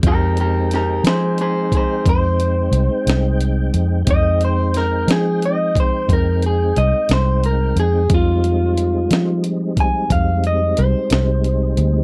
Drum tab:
HH |xxxxxxxxxxxx|xxxxxxxxxxxx|xxxxxxxxxxxx|
SD |--oo-----o--|--oo-----o--|---o-----o--|
BD |o----oo-----|o----oo-----|o----oo-----|